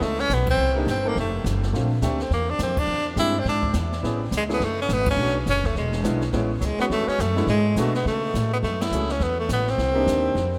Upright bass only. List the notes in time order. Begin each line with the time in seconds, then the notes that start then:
0.01 C#2
0.30 B1
0.57 C2
0.87 G1
1.16 F1
1.44 F#1
1.73 A#1
2.02 D2
2.30 E2
2.59 F2
2.87 E2
3.16 G2
3.45 G#2
3.74 E2
4.03 A1
4.31 C#2
4.60 F#1
4.89 G#1
5.17 B1
5.46 F#1
5.75 E1
6.04 B1
6.32 A1
6.61 C#2
6.78 muted upright bass stroke
6.90 E2
7.07 muted upright bass stroke
7.19 F#2
7.47 G#2
7.76 B2
8.05 C#3
8.34 A2
8.63 F#2
8.91 C#2
9.20 E2
9.49 A1
9.78 C2
10.07 D#2
10.35 F2